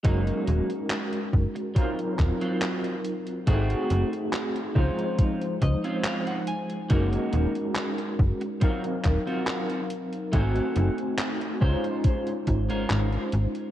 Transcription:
<<
  \new Staff \with { instrumentName = "Clean electric guitar" } { \time 4/4 \key ges \lydian \tempo 4 = 70 << { r1 | r2 r8 ees''8 f''16 ges''16 aes''8 | r1 | r1 | } \\ { <ges bes ees'>8. r4 r16 <ges c' f'>16 r8 <ges c' f'>8. r8 | <a c' ges'>8. r8. <c' des' f'>8. r8 <c' des' f'>8. r8 | <bes ees' ges'>8. r4 r16 <c' f' ges'>16 r8 <c' f' ges'>8. r8 | <c' ges' a'>8. r8. <des' f' c''>8. r8 <des' f' bes'>8. r8 | } >> }
  \new Staff \with { instrumentName = "Tine electric piano" } { \time 4/4 \key ges \lydian <aes des' ees' ges' bes'>2 <ges c' ees' f' bes'>2 | <a c' ees' ges' aes'>4. <f aes ees' c''>2~ <f aes ees' c''>8 | <aes des' ees' ges' bes'>2 <ges c' ees' bes' f''>2 | <a c' ees' ges' aes''>4. <aes des' ees' f' c''>2~ <aes des' ees' f' c''>8 | }
  \new Staff \with { instrumentName = "FM bass" } { \clef bass \time 4/4 \key ges \lydian ges,,16 r16 ees,,16 r8. ges,,16 r8. ees,,16 r4 r16 | aes,,16 r16 ges,,16 r8. des,16 r8. des,16 r4 r16 | ges,,16 r16 ees,,16 r8. ges,,16 r8. ees,,16 r4 r16 | aes,,16 r16 ges,,16 r8. des,16 r8. aes,,16 aes,,16 aes,,16 r16 aes,,16 r16 | }
  \new DrumStaff \with { instrumentName = "Drums" } \drummode { \time 4/4 <hh bd>16 hh16 hh16 hh16 <hc hh>16 hh16 bd16 hh16 <hh bd>16 hh16 <hc hh bd>16 hh16 <hc hh>16 hh16 hh16 hh16 | <hh bd>16 hh16 hh16 hh16 <hc hh>16 hh16 bd16 hh16 <hh bd>16 hh16 <hh bd>16 hh16 <hc hh>16 hh16 hh16 hh16 | <hh bd>16 hh16 hh16 hh16 <hc hh>16 hh16 bd16 hh16 <hh bd>16 hh16 <hc hh bd>16 hh16 <hc hh>16 hh16 hh16 hh16 | <hh bd>16 hh16 hh16 hh16 <hc hh>16 hh16 bd16 hh16 <hh bd>16 hh16 <hh bd>16 hh16 <hc hh>16 hh16 hh16 hh16 | }
>>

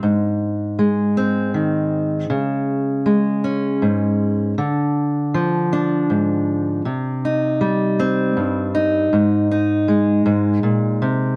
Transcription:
\new Staff \with { instrumentName = "Steel-string acoustic guitar" } { \clef bass \time 6/8 \key c \minor \tempo 4. = 53 << { r4. c'4. | r4. des'4. | r4. d'4. | r8 ees'4 c'4 ees'8 |
r8 ees'2~ ees'8 | } \\ { aes,4 aes4 ees4 | des4 aes4 aes,4 | d4 f4 aes,4 | c4 g4 g,4 |
aes,4 aes8 aes,8 bes,8 c8 | } >> }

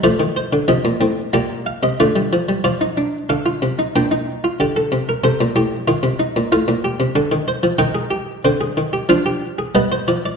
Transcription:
<<
  \new Staff \with { instrumentName = "Harpsichord" } { \time 4/4 \key f \dorian \tempo 4 = 92 << { d''8 c''8 ees''4 d''8 f''16 ees''16 d''4 | d''4 f''4 g''4 d''4 | c''2 f''2 | \key c \minor g''2 f''4 ees''8 d''8 | } \\ { f'2 g'4 f'4 | f'16 ees'16 d'8 a'16 f'8 ees'16 d'16 ees'8 f'16 g'16 a'8 bes'16 | a'8 g'8 f'8 ees'8 f'8 g'8 a'8 c''8 | bes'16 aes'16 g'8 c''16 aes'8 g'16 f'16 g'8 aes'16 b'16 c''8 d''16 | } >> }
  \new Staff \with { instrumentName = "Harpsichord" } { \clef bass \time 4/4 \key f \dorian << { a4 f8 c'8 bes4 a16 g16 f16 g16 | r1 | r1 | \key c \minor ees'4 c'4 d'4 b4 | } \\ { f16 ees8 d16 c16 bes,16 a,8 bes,8. c16 d4 | f4 d8 c8 bes,4 d8 c8 | c16 bes,16 a,8 ees16 c8 bes,16 a,16 bes,8 c16 d16 ees8 f16 | ees4 d8 ees8 f4 g8 f8 | } >> }
>>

